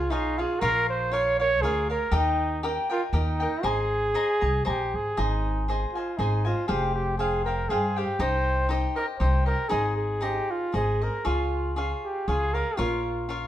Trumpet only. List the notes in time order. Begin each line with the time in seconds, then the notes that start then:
Already playing: F4
0.11 D#4
0.39 F4
0.60 A#4
0.89 C5
1.13 C#5
1.39 C#5
1.62 G#4
1.91 A#4
2.14 D#4
2.92 F4
3.16 D#4
3.65 G#4
4.66 G4
4.95 G#4
5.19 D#4
5.93 F4
6.17 D#4
6.46 F4
6.68 G4
6.95 G4
7.18 G#4
7.45 A#4
7.69 G#4
7.98 G4
8.22 C5
8.96 A#4
9.19 C5
9.46 A#4
9.69 G#4
9.97 G#4
10.22 G4
10.51 F4
10.76 G#4
11.04 A#4
11.26 F4
12.04 G4
12.28 G#4
12.54 A#4
12.79 F4